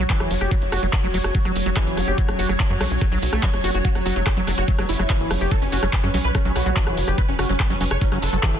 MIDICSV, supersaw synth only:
0, 0, Header, 1, 2, 480
1, 0, Start_track
1, 0, Tempo, 416667
1, 592, Time_signature, 4, 2, 24, 8
1, 9906, End_track
2, 0, Start_track
2, 0, Title_t, "Supersaw synth"
2, 0, Program_c, 0, 81
2, 4432, Note_on_c, 0, 66, 98
2, 4493, Note_off_c, 0, 66, 0
2, 4553, Note_on_c, 0, 54, 66
2, 4613, Note_off_c, 0, 54, 0
2, 4672, Note_on_c, 0, 54, 66
2, 4733, Note_off_c, 0, 54, 0
2, 4792, Note_on_c, 0, 54, 63
2, 4853, Note_off_c, 0, 54, 0
2, 5032, Note_on_c, 0, 54, 65
2, 5093, Note_off_c, 0, 54, 0
2, 5152, Note_on_c, 0, 54, 65
2, 5213, Note_off_c, 0, 54, 0
2, 5272, Note_on_c, 0, 66, 96
2, 5333, Note_off_c, 0, 66, 0
2, 5393, Note_on_c, 0, 54, 63
2, 5453, Note_off_c, 0, 54, 0
2, 5513, Note_on_c, 0, 54, 64
2, 5573, Note_off_c, 0, 54, 0
2, 5632, Note_on_c, 0, 64, 99
2, 6257, Note_off_c, 0, 64, 0
2, 6353, Note_on_c, 0, 69, 97
2, 6414, Note_off_c, 0, 69, 0
2, 6473, Note_on_c, 0, 61, 66
2, 6533, Note_off_c, 0, 61, 0
2, 6593, Note_on_c, 0, 61, 66
2, 6653, Note_off_c, 0, 61, 0
2, 6712, Note_on_c, 0, 61, 65
2, 6773, Note_off_c, 0, 61, 0
2, 6953, Note_on_c, 0, 61, 64
2, 7014, Note_off_c, 0, 61, 0
2, 7073, Note_on_c, 0, 61, 66
2, 7134, Note_off_c, 0, 61, 0
2, 7193, Note_on_c, 0, 71, 96
2, 7253, Note_off_c, 0, 71, 0
2, 7313, Note_on_c, 0, 61, 64
2, 7374, Note_off_c, 0, 61, 0
2, 7433, Note_on_c, 0, 61, 64
2, 7494, Note_off_c, 0, 61, 0
2, 7553, Note_on_c, 0, 66, 99
2, 8177, Note_off_c, 0, 66, 0
2, 8273, Note_on_c, 0, 71, 98
2, 8334, Note_off_c, 0, 71, 0
2, 8393, Note_on_c, 0, 61, 66
2, 8453, Note_off_c, 0, 61, 0
2, 8513, Note_on_c, 0, 61, 65
2, 8574, Note_off_c, 0, 61, 0
2, 8633, Note_on_c, 0, 61, 66
2, 8693, Note_off_c, 0, 61, 0
2, 8873, Note_on_c, 0, 61, 65
2, 8933, Note_off_c, 0, 61, 0
2, 8992, Note_on_c, 0, 61, 66
2, 9053, Note_off_c, 0, 61, 0
2, 9112, Note_on_c, 0, 73, 98
2, 9173, Note_off_c, 0, 73, 0
2, 9232, Note_on_c, 0, 61, 66
2, 9293, Note_off_c, 0, 61, 0
2, 9352, Note_on_c, 0, 61, 66
2, 9413, Note_off_c, 0, 61, 0
2, 9471, Note_on_c, 0, 69, 102
2, 9906, Note_off_c, 0, 69, 0
2, 9906, End_track
0, 0, End_of_file